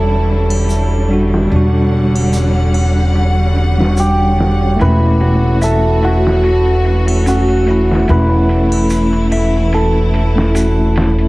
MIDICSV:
0, 0, Header, 1, 8, 480
1, 0, Start_track
1, 0, Tempo, 821918
1, 882, Time_signature, 4, 2, 24, 8
1, 6589, End_track
2, 0, Start_track
2, 0, Title_t, "Hammered dulcimer"
2, 0, Program_c, 0, 15
2, 0, Note_on_c, 0, 69, 80
2, 0, Note_on_c, 0, 71, 92
2, 565, Note_off_c, 0, 71, 0
2, 1643, Note_off_c, 0, 69, 0
2, 2333, Note_on_c, 0, 67, 80
2, 2811, Note_on_c, 0, 71, 95
2, 3292, Note_on_c, 0, 69, 85
2, 3530, Note_on_c, 0, 66, 85
2, 3565, Note_off_c, 0, 67, 0
2, 4250, Note_off_c, 0, 66, 0
2, 4252, Note_on_c, 0, 66, 78
2, 4407, Note_off_c, 0, 71, 0
2, 4730, Note_on_c, 0, 71, 90
2, 5002, Note_off_c, 0, 69, 0
2, 5690, Note_on_c, 0, 69, 78
2, 6150, Note_off_c, 0, 66, 0
2, 6326, Note_off_c, 0, 71, 0
2, 6589, Note_off_c, 0, 69, 0
2, 6589, End_track
3, 0, Start_track
3, 0, Title_t, "Synth texture"
3, 0, Program_c, 1, 99
3, 0, Note_on_c, 1, 61, 68
3, 0, Note_on_c, 1, 73, 72
3, 6589, Note_off_c, 1, 61, 0
3, 6589, Note_off_c, 1, 73, 0
3, 6589, End_track
4, 0, Start_track
4, 0, Title_t, "Clean electric guitar"
4, 0, Program_c, 2, 27
4, 2800, Note_on_c, 2, 64, 82
4, 3020, Note_off_c, 2, 64, 0
4, 3042, Note_on_c, 2, 66, 83
4, 3260, Note_off_c, 2, 66, 0
4, 3281, Note_on_c, 2, 76, 86
4, 3511, Note_off_c, 2, 76, 0
4, 3523, Note_on_c, 2, 64, 92
4, 3741, Note_off_c, 2, 64, 0
4, 3763, Note_on_c, 2, 66, 95
4, 4221, Note_off_c, 2, 66, 0
4, 4243, Note_on_c, 2, 61, 63
4, 4472, Note_off_c, 2, 61, 0
4, 4720, Note_on_c, 2, 64, 87
4, 4951, Note_off_c, 2, 64, 0
4, 5444, Note_on_c, 2, 76, 73
4, 5672, Note_off_c, 2, 76, 0
4, 6161, Note_on_c, 2, 66, 66
4, 6391, Note_off_c, 2, 66, 0
4, 6589, End_track
5, 0, Start_track
5, 0, Title_t, "Tine electric piano"
5, 0, Program_c, 3, 4
5, 0, Control_c, 3, 64, 127
5, 0, Note_on_c, 3, 55, 78
5, 0, Note_on_c, 3, 62, 71
5, 0, Note_on_c, 3, 66, 83
5, 606, Note_off_c, 3, 55, 0
5, 620, Note_off_c, 3, 62, 0
5, 633, Note_off_c, 3, 66, 0
5, 634, Note_on_c, 3, 55, 70
5, 646, Note_on_c, 3, 62, 65
5, 660, Note_on_c, 3, 66, 80
5, 852, Note_off_c, 3, 55, 0
5, 858, Note_off_c, 3, 62, 0
5, 859, Note_on_c, 3, 55, 65
5, 865, Note_off_c, 3, 66, 0
5, 885, Note_on_c, 3, 62, 61
5, 911, Note_on_c, 3, 66, 72
5, 2170, Note_off_c, 3, 55, 0
5, 2183, Note_off_c, 3, 62, 0
5, 2196, Note_off_c, 3, 66, 0
5, 2205, Note_on_c, 3, 55, 65
5, 2216, Note_on_c, 3, 62, 61
5, 2230, Note_on_c, 3, 66, 68
5, 2325, Note_off_c, 3, 55, 0
5, 2331, Note_off_c, 3, 62, 0
5, 2338, Note_off_c, 3, 66, 0
5, 2780, Note_on_c, 3, 57, 83
5, 2806, Note_on_c, 3, 61, 77
5, 2811, Control_c, 3, 64, 0
5, 2833, Note_on_c, 3, 64, 93
5, 2908, Control_c, 3, 64, 127
5, 4445, Note_off_c, 3, 57, 0
5, 4458, Note_off_c, 3, 61, 0
5, 4472, Note_off_c, 3, 64, 0
5, 4473, Note_on_c, 3, 57, 73
5, 4487, Note_on_c, 3, 61, 68
5, 4499, Note_on_c, 3, 64, 84
5, 4692, Note_off_c, 3, 57, 0
5, 4699, Note_off_c, 3, 61, 0
5, 4700, Note_on_c, 3, 57, 72
5, 4705, Note_off_c, 3, 64, 0
5, 4726, Note_on_c, 3, 61, 63
5, 4752, Note_on_c, 3, 64, 75
5, 6011, Note_off_c, 3, 57, 0
5, 6024, Note_off_c, 3, 61, 0
5, 6037, Note_off_c, 3, 64, 0
5, 6044, Note_on_c, 3, 57, 65
5, 6057, Note_on_c, 3, 61, 63
5, 6070, Note_on_c, 3, 64, 78
5, 6164, Note_off_c, 3, 57, 0
5, 6171, Note_off_c, 3, 61, 0
5, 6177, Note_off_c, 3, 64, 0
5, 6589, End_track
6, 0, Start_track
6, 0, Title_t, "String section"
6, 0, Program_c, 4, 48
6, 0, Note_on_c, 4, 50, 64
6, 0, Note_on_c, 4, 55, 58
6, 0, Note_on_c, 4, 64, 74
6, 865, Note_off_c, 4, 64, 0
6, 882, Note_on_c, 4, 78, 68
6, 2781, Note_off_c, 4, 50, 0
6, 2781, Note_off_c, 4, 55, 0
6, 2783, Note_off_c, 4, 78, 0
6, 2806, Note_on_c, 4, 52, 66
6, 2806, Note_on_c, 4, 57, 62
6, 2806, Note_on_c, 4, 66, 72
6, 4705, Note_off_c, 4, 66, 0
6, 4722, Note_on_c, 4, 64, 72
6, 6589, Note_off_c, 4, 52, 0
6, 6589, Note_off_c, 4, 57, 0
6, 6589, Note_off_c, 4, 64, 0
6, 6589, End_track
7, 0, Start_track
7, 0, Title_t, "Upright bass"
7, 0, Program_c, 5, 32
7, 0, Note_on_c, 5, 28, 71
7, 864, Note_off_c, 5, 28, 0
7, 885, Note_on_c, 5, 28, 71
7, 2782, Note_off_c, 5, 28, 0
7, 2808, Note_on_c, 5, 28, 71
7, 4703, Note_off_c, 5, 28, 0
7, 4725, Note_on_c, 5, 28, 77
7, 6589, Note_off_c, 5, 28, 0
7, 6589, End_track
8, 0, Start_track
8, 0, Title_t, "Drums"
8, 52, Note_on_c, 9, 42, 35
8, 110, Note_off_c, 9, 42, 0
8, 162, Note_on_c, 9, 46, 57
8, 220, Note_off_c, 9, 46, 0
8, 292, Note_on_c, 9, 42, 38
8, 294, Note_on_c, 9, 81, 74
8, 351, Note_off_c, 9, 42, 0
8, 353, Note_off_c, 9, 81, 0
8, 402, Note_on_c, 9, 46, 71
8, 406, Note_on_c, 9, 82, 72
8, 460, Note_off_c, 9, 46, 0
8, 464, Note_off_c, 9, 82, 0
8, 534, Note_on_c, 9, 42, 39
8, 592, Note_off_c, 9, 42, 0
8, 641, Note_on_c, 9, 46, 54
8, 699, Note_off_c, 9, 46, 0
8, 782, Note_on_c, 9, 38, 38
8, 841, Note_off_c, 9, 38, 0
8, 879, Note_on_c, 9, 46, 74
8, 937, Note_off_c, 9, 46, 0
8, 1118, Note_on_c, 9, 46, 59
8, 1177, Note_off_c, 9, 46, 0
8, 1259, Note_on_c, 9, 81, 68
8, 1318, Note_off_c, 9, 81, 0
8, 1358, Note_on_c, 9, 46, 70
8, 1361, Note_on_c, 9, 82, 66
8, 1417, Note_off_c, 9, 46, 0
8, 1419, Note_off_c, 9, 82, 0
8, 1491, Note_on_c, 9, 42, 41
8, 1549, Note_off_c, 9, 42, 0
8, 1600, Note_on_c, 9, 46, 58
8, 1602, Note_on_c, 9, 81, 52
8, 1659, Note_off_c, 9, 46, 0
8, 1660, Note_off_c, 9, 81, 0
8, 1842, Note_on_c, 9, 46, 67
8, 1900, Note_off_c, 9, 46, 0
8, 2081, Note_on_c, 9, 46, 57
8, 2139, Note_off_c, 9, 46, 0
8, 2221, Note_on_c, 9, 38, 37
8, 2280, Note_off_c, 9, 38, 0
8, 2319, Note_on_c, 9, 82, 72
8, 2320, Note_on_c, 9, 46, 76
8, 2378, Note_off_c, 9, 46, 0
8, 2378, Note_off_c, 9, 82, 0
8, 2561, Note_on_c, 9, 46, 56
8, 2571, Note_on_c, 9, 38, 47
8, 2619, Note_off_c, 9, 46, 0
8, 2630, Note_off_c, 9, 38, 0
8, 2692, Note_on_c, 9, 42, 41
8, 2750, Note_off_c, 9, 42, 0
8, 2799, Note_on_c, 9, 46, 81
8, 2857, Note_off_c, 9, 46, 0
8, 3040, Note_on_c, 9, 46, 62
8, 3098, Note_off_c, 9, 46, 0
8, 3279, Note_on_c, 9, 46, 74
8, 3283, Note_on_c, 9, 82, 73
8, 3337, Note_off_c, 9, 46, 0
8, 3341, Note_off_c, 9, 82, 0
8, 3520, Note_on_c, 9, 46, 64
8, 3578, Note_off_c, 9, 46, 0
8, 3660, Note_on_c, 9, 38, 42
8, 3719, Note_off_c, 9, 38, 0
8, 3757, Note_on_c, 9, 46, 72
8, 3816, Note_off_c, 9, 46, 0
8, 3889, Note_on_c, 9, 42, 39
8, 3947, Note_off_c, 9, 42, 0
8, 3999, Note_on_c, 9, 46, 57
8, 4057, Note_off_c, 9, 46, 0
8, 4131, Note_on_c, 9, 42, 40
8, 4135, Note_on_c, 9, 81, 70
8, 4189, Note_off_c, 9, 42, 0
8, 4193, Note_off_c, 9, 81, 0
8, 4239, Note_on_c, 9, 46, 78
8, 4246, Note_on_c, 9, 82, 78
8, 4298, Note_off_c, 9, 46, 0
8, 4304, Note_off_c, 9, 82, 0
8, 4371, Note_on_c, 9, 42, 37
8, 4430, Note_off_c, 9, 42, 0
8, 4479, Note_on_c, 9, 46, 60
8, 4537, Note_off_c, 9, 46, 0
8, 4622, Note_on_c, 9, 38, 36
8, 4680, Note_off_c, 9, 38, 0
8, 4718, Note_on_c, 9, 46, 76
8, 4777, Note_off_c, 9, 46, 0
8, 4959, Note_on_c, 9, 46, 59
8, 5017, Note_off_c, 9, 46, 0
8, 5092, Note_on_c, 9, 81, 69
8, 5150, Note_off_c, 9, 81, 0
8, 5196, Note_on_c, 9, 82, 69
8, 5199, Note_on_c, 9, 46, 75
8, 5255, Note_off_c, 9, 82, 0
8, 5257, Note_off_c, 9, 46, 0
8, 5331, Note_on_c, 9, 42, 40
8, 5390, Note_off_c, 9, 42, 0
8, 5440, Note_on_c, 9, 46, 59
8, 5443, Note_on_c, 9, 81, 47
8, 5498, Note_off_c, 9, 46, 0
8, 5501, Note_off_c, 9, 81, 0
8, 5680, Note_on_c, 9, 46, 76
8, 5738, Note_off_c, 9, 46, 0
8, 5920, Note_on_c, 9, 46, 60
8, 5979, Note_off_c, 9, 46, 0
8, 6063, Note_on_c, 9, 38, 37
8, 6121, Note_off_c, 9, 38, 0
8, 6160, Note_on_c, 9, 46, 78
8, 6166, Note_on_c, 9, 82, 79
8, 6218, Note_off_c, 9, 46, 0
8, 6225, Note_off_c, 9, 82, 0
8, 6399, Note_on_c, 9, 46, 60
8, 6410, Note_on_c, 9, 38, 49
8, 6457, Note_off_c, 9, 46, 0
8, 6468, Note_off_c, 9, 38, 0
8, 6532, Note_on_c, 9, 42, 41
8, 6589, Note_off_c, 9, 42, 0
8, 6589, End_track
0, 0, End_of_file